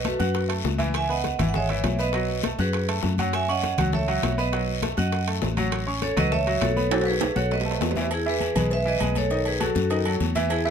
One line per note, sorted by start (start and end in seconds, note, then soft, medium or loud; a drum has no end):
0.00 0.14 B1 medium
0.04 0.17 A3 medium
0.04 0.48 F#4 medium
0.04 0.17 A4 medium
0.04 0.47 B4 medium
0.04 0.17 A5 medium
0.04 high bongo medium
0.04 high conga medium
0.04 high timbale medium
0.04 short guiro medium
0.19 0.61 F#2 medium
0.19 0.44 F#4 medium
0.19 0.44 F#5 medium
0.19 0.44 F#6 medium
0.19 high bongo soft
0.19 high conga medium
0.19 short guiro medium
0.34 high bongo medium
0.34 high conga soft
0.34 high timbale medium
0.34 long guiro medium
0.48 0.73 A3 medium
0.48 0.74 A4 medium
0.48 0.74 A5 medium
0.48 high bongo soft
0.48 high conga soft
0.48 high timbale medium
0.64 1.34 C#2 medium
0.64 high bongo medium
0.64 low bongo medium
0.64 high conga medium
0.64 short guiro medium
0.78 1.03 E3 loud
0.78 1.04 E4 medium
0.78 1.04 E5 medium
0.78 high conga medium
0.78 high timbale medium
0.78 short guiro medium
0.94 1.03 E5 medium
0.94 1.02 G#5 loud
0.94 high bongo medium
0.94 high timbale loud
0.94 long guiro medium
1.09 1.33 B3 medium
1.09 1.34 B4 medium
1.09 1.38 D#5 medium
1.09 1.38 F#5 loud
1.09 1.34 B5 medium
1.09 high conga soft
1.24 high bongo medium
1.24 high conga medium
1.24 high timbale medium
1.24 short guiro medium
1.39 1.81 G#1 loud
1.39 1.51 E3 medium
1.39 1.51 E4 medium
1.39 1.52 E5 medium
1.39 high bongo soft
1.39 high conga loud
1.39 low conga medium
1.39 high timbale medium
1.39 short guiro medium
1.49 1.55 F#5 medium
1.54 1.67 G#3 medium
1.54 1.67 G#4 medium
1.54 1.97 C#5 medium
1.54 2.01 E5 loud
1.54 1.67 G#5 medium
1.54 high bongo medium
1.54 high conga soft
1.54 low conga medium
1.54 long guiro medium
1.69 1.94 E3 medium
1.69 1.94 E4 medium
1.69 1.94 E5 medium
1.69 high bongo soft
1.69 high conga soft
1.69 high timbale medium
1.84 2.53 B1 medium
1.84 high bongo medium
1.84 low bongo medium
1.84 high conga medium
1.84 high timbale medium
1.84 low timbale medium
1.84 short guiro medium
1.98 2.11 B3 medium
1.98 2.11 B4 medium
1.98 2.41 B4 medium
1.98 2.41 D#5 medium
1.98 2.12 B5 medium
1.98 high bongo soft
1.98 short guiro medium
2.13 2.39 F#3 medium
2.13 2.39 F#4 medium
2.13 2.39 F#5 medium
2.13 high bongo medium
2.13 high conga soft
2.13 high timbale medium
2.13 long guiro medium
2.28 high bongo soft
2.28 high conga soft
2.43 2.56 A3 medium
2.43 2.56 A4 medium
2.43 2.57 A5 medium
2.43 high bongo medium
2.43 high conga loud
2.43 high timbale medium
2.43 short guiro medium
2.58 3.00 F#2 medium
2.58 2.83 F#4 medium
2.58 2.87 G#4 medium
2.58 2.87 B4 medium
2.58 2.84 F#5 medium
2.58 2.84 F#6 medium
2.58 high bongo soft
2.58 high conga medium
2.58 short guiro medium
2.73 high bongo medium
2.73 high conga soft
2.73 high timbale medium
2.73 long guiro medium
2.88 3.13 A3 medium
2.88 3.13 A4 medium
2.88 3.13 A5 medium
2.88 high bongo soft
2.88 high conga soft
2.88 high timbale loud
3.03 3.73 F#2 medium
3.03 high bongo medium
3.03 low bongo medium
3.03 high conga medium
3.03 short guiro medium
3.18 3.43 F#3 medium
3.18 3.43 F#4 medium
3.18 3.43 F#5 medium
3.18 high conga medium
3.18 high timbale medium
3.18 short guiro medium
3.33 3.48 E5 loud
3.33 3.48 G#5 loud
3.33 high bongo medium
3.33 high conga soft
3.33 high timbale medium
3.33 long guiro medium
3.48 3.73 C#4 medium
3.48 3.73 C#5 medium
3.48 3.77 D#5 medium
3.48 3.77 F#5 loud
3.48 3.73 C#6 medium
3.48 high conga soft
3.63 high bongo medium
3.63 high conga medium
3.63 high timbale medium
3.63 short guiro medium
3.78 4.20 C#2 loud
3.78 3.91 F#3 medium
3.78 3.91 F#4 medium
3.78 3.91 F#5 medium
3.78 high bongo soft
3.78 high conga medium
3.78 low conga medium
3.78 high timbale medium
3.78 short guiro medium
3.93 4.05 A3 medium
3.93 4.05 A4 medium
3.93 4.36 C#5 medium
3.93 4.40 E5 medium
3.93 4.06 A5 medium
3.93 high bongo medium
3.93 high conga soft
3.93 low conga medium
3.93 long guiro medium
4.08 4.32 F#3 medium
4.08 4.33 F#4 medium
4.08 4.33 F#5 medium
4.08 high bongo soft
4.08 high conga soft
4.08 high timbale medium
4.23 4.92 B1 medium
4.23 high bongo medium
4.23 low bongo medium
4.23 high conga medium
4.23 high timbale loud
4.23 short guiro medium
4.38 4.50 B3 medium
4.38 4.50 B4 medium
4.38 4.80 B4 medium
4.38 4.80 D#5 medium
4.38 4.50 B5 medium
4.38 high bongo soft
4.38 short guiro medium
4.53 4.77 F#3 medium
4.53 4.77 F#4 medium
4.53 4.77 F#5 medium
4.53 high bongo medium
4.53 high conga soft
4.53 high timbale medium
4.53 long guiro medium
4.68 high bongo soft
4.68 high conga soft
4.82 4.95 A3 medium
4.82 4.95 A4 medium
4.82 4.95 A5 medium
4.82 high bongo medium
4.82 high conga loud
4.82 high timbale medium
4.82 short guiro medium
4.97 5.39 F#2 medium
4.97 5.22 F#4 medium
4.97 5.26 D#5 medium
4.97 5.22 F#5 medium
4.97 5.26 F#5 medium
4.97 5.22 F#6 medium
4.97 high bongo soft
4.97 high conga medium
4.97 short guiro medium
5.12 high bongo medium
5.12 high conga soft
5.12 high timbale medium
5.12 long guiro medium
5.27 5.52 A3 medium
5.27 5.52 A4 medium
5.27 5.52 A5 medium
5.27 high bongo soft
5.27 high conga soft
5.27 high timbale medium
5.42 6.12 A1 medium
5.42 high bongo medium
5.42 low bongo medium
5.42 high conga medium
5.42 low timbale medium
5.42 short guiro medium
5.57 5.82 F#3 medium
5.57 5.82 F#4 medium
5.57 5.82 F#5 medium
5.57 high conga medium
5.57 high timbale medium
5.57 short guiro medium
5.72 high bongo medium
5.72 high timbale loud
5.72 long guiro medium
5.87 6.11 C#4 medium
5.87 6.11 C#5 medium
5.87 6.12 C#6 medium
5.87 high conga soft
6.02 6.10 A4 medium
6.02 6.10 C#5 medium
6.02 high bongo medium
6.02 high conga medium
6.02 high timbale medium
6.02 short guiro medium
6.16 6.59 C#2 loud
6.16 6.29 F#3 loud
6.16 6.29 F#4 medium
6.16 6.32 B4 medium
6.16 6.33 D#5 loud
6.16 6.29 F#5 medium
6.16 high conga medium
6.16 low conga medium
6.16 high timbale loud
6.16 short guiro medium
6.31 6.44 A3 medium
6.31 6.44 A4 medium
6.31 6.60 C#5 medium
6.31 6.63 E5 loud
6.31 6.44 A5 medium
6.31 high bongo medium
6.31 high conga soft
6.31 low conga medium
6.31 long guiro medium
6.47 6.71 F#3 medium
6.47 6.72 F#4 medium
6.47 6.72 F#5 medium
6.47 high bongo soft
6.47 high conga soft
6.47 high timbale medium
6.61 7.31 B1 medium
6.61 6.90 A4 medium
6.61 6.92 C#5 loud
6.61 high bongo medium
6.61 low bongo loud
6.61 high conga medium
6.61 high timbale medium
6.61 short guiro medium
6.76 6.89 B3 medium
6.76 6.89 B4 medium
6.76 6.89 B5 medium
6.76 high bongo soft
6.76 high conga medium
6.76 short guiro medium
6.91 7.16 F#3 medium
6.91 7.16 F#4 medium
6.91 7.00 F#4 medium
6.91 6.98 A4 medium
6.91 7.16 F#5 medium
6.91 high bongo medium
6.91 high timbale loud
6.91 long guiro medium
7.01 high timbale medium
7.06 7.35 G#4 medium
7.06 7.37 B4 medium
7.06 high bongo soft
7.06 high conga soft
7.11 high timbale medium
7.21 7.33 A3 medium
7.21 7.34 A4 medium
7.21 7.34 A5 medium
7.21 high bongo medium
7.21 high conga medium
7.21 high timbale loud
7.21 short guiro medium
7.36 7.78 B1 medium
7.36 7.61 F#4 medium
7.36 7.44 A4 medium
7.36 7.43 C#5 loud
7.36 7.61 F#5 medium
7.36 7.61 F#6 medium
7.36 high bongo soft
7.36 high conga loud
7.36 short guiro medium
7.51 7.94 B4 medium
7.51 7.93 D#5 medium
7.51 high bongo medium
7.51 high conga soft
7.51 low timbale medium
7.51 long guiro medium
7.61 low timbale medium
7.65 7.90 A3 medium
7.65 7.91 A4 medium
7.65 7.91 A5 medium
7.65 high bongo soft
7.65 high conga soft
7.71 low timbale medium
7.81 8.50 E2 medium
7.81 high bongo medium
7.81 low bongo medium
7.81 high conga medium
7.81 low timbale medium
7.81 short guiro medium
7.91 low timbale medium
7.96 8.09 E3 medium
7.96 8.09 E4 medium
7.96 8.09 E5 medium
7.96 high conga medium
7.96 short guiro medium
8.01 low timbale medium
8.11 8.20 E4 medium
8.11 8.20 G#4 loud
8.11 cowbell loud
8.11 low agogo loud
8.11 long guiro medium
8.26 8.51 E3 medium
8.26 8.51 E4 medium
8.26 8.69 G#4 medium
8.26 8.72 B4 medium
8.26 8.51 E5 medium
8.26 high conga soft
8.40 cowbell medium
8.40 high conga medium
8.40 low agogo medium
8.40 short guiro medium
8.56 8.98 B1 medium
8.56 8.80 G#3 medium
8.56 8.81 G#4 medium
8.56 8.81 B4 medium
8.56 cowbell medium
8.56 high conga loud
8.56 low conga medium
8.56 low agogo loud
8.56 short guiro medium
8.71 8.80 B4 medium
8.71 8.79 E5 loud
8.71 cowbell loud
8.71 high conga soft
8.71 long guiro medium
8.85 8.98 E3 medium
8.85 8.98 E4 medium
8.85 9.15 B4 medium
8.85 9.15 D#5 loud
8.85 8.98 E5 medium
8.85 high conga soft
9.00 9.70 B1 medium
9.00 9.25 G#3 medium
9.00 9.25 G#4 medium
9.00 9.25 B4 medium
9.00 cowbell medium
9.00 high conga medium
9.00 low agogo loud
9.00 short guiro medium
9.15 9.45 A4 medium
9.15 9.45 C#5 loud
9.15 cowbell medium
9.15 high conga medium
9.15 low agogo medium
9.15 short guiro medium
9.30 9.55 D#3 medium
9.30 9.55 D#4 medium
9.30 9.55 D#5 medium
9.30 cowbell loud
9.30 high conga soft
9.30 long guiro medium
9.45 9.61 G#4 medium
9.45 9.62 B4 medium
9.45 cowbell medium
9.45 high conga soft
9.45 low agogo medium
9.60 9.85 F#3 medium
9.60 9.85 F#4 medium
9.60 10.17 F#4 medium
9.60 9.85 A4 medium
9.60 10.17 A4 medium
9.60 cowbell medium
9.60 high conga loud
9.60 low agogo loud
9.60 short guiro medium
9.75 10.17 F#2 medium
9.75 cowbell medium
9.75 high conga loud
9.75 short guiro medium
9.90 10.03 D#3 medium
9.90 10.03 D#4 medium
9.90 10.03 D#5 medium
9.90 cowbell loud
9.90 high conga soft
9.90 low agogo medium
9.90 long guiro medium
10.05 10.30 F#3 medium
10.05 10.30 F#4 medium
10.05 10.31 A4 medium
10.05 high conga soft
10.05 low agogo loud
10.20 10.70 E2 medium
10.20 cowbell medium
10.20 high conga medium
10.20 short guiro medium
10.35 10.60 E3 loud
10.35 10.60 E4 loud
10.35 10.60 E5 loud
10.35 cowbell medium
10.35 high conga medium
10.35 low agogo medium
10.35 short guiro medium
10.50 10.65 E4 medium
10.50 10.64 G#4 medium
10.50 cowbell loud
10.50 high conga soft
10.50 low agogo loud
10.50 long guiro medium
10.65 10.70 E3 medium
10.65 10.70 E4 medium
10.65 10.70 G#4 medium
10.65 10.70 B4 medium
10.65 10.70 E5 loud
10.65 high conga soft